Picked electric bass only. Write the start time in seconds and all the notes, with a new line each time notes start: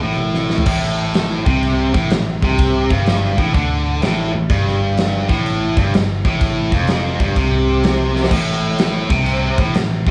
0.03 A1
0.67 A1
1.47 C2
1.95 A1
2.12 A1
2.43 C2
2.90 G1
3.38 A1
3.55 D2
4.03 A1
4.34 A1
4.50 G1
5.29 A1
5.77 G1
5.93 G1
6.25 A1
6.72 F1
7.20 G1
7.37 C2
8.31 A1
9.10 C2
9.58 A1
9.76 A1
10.07 C2